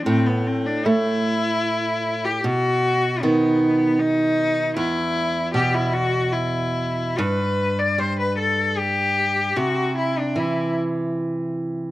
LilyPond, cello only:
\new Staff \with { instrumentName = "Cello" } { \time 3/4 \key e \minor \tempo 4 = 76 c'16 b16 c'16 d'16 e'4.~ e'16 g'16 | fis'4 b4 dis'4 | e'4 g'16 e'16 fis'8 e'4 | b'8. d''16 c''16 b'16 a'8 g'4 |
fis'8 e'16 d'16 e'8 r4. | }